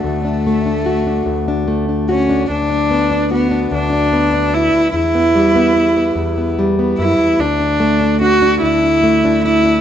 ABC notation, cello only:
X:1
M:6/8
L:1/8
Q:3/8=49
K:D
V:1 name="Cello"
A,4 z C | D2 B, D2 E | E4 z E | D2 F E2 E |]